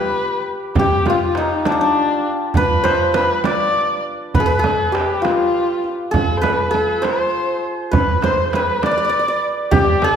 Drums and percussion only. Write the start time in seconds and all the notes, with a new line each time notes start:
0.75 tombak dum, frame drum
1.06 tombak tek, frame drum
1.35 tombak tek
1.65 tombak tek, frame drum
2.54 tombak dum, frame drum
2.85 tombak tek, frame drum
3.14 tombak tek, frame drum
3.44 tombak tek, frame drum
4.34 tombak dum, frame drum
4.64 tombak tek, frame drum
4.95 tombak tek
5.25 tombak tek, frame drum
5.54 tombak ka
5.84 tombak ka
6.14 tombak dum, frame drum
6.43 tombak tek, frame drum
6.74 frame drum
7.03 tombak tek, frame drum
7.93 frame drum, tombak dum
8.22 tombak tek, frame drum
8.53 tombak tek, frame drum
8.83 tombak tek, frame drum
9.72 frame drum, tombak dum
10.02 tombak tek, frame drum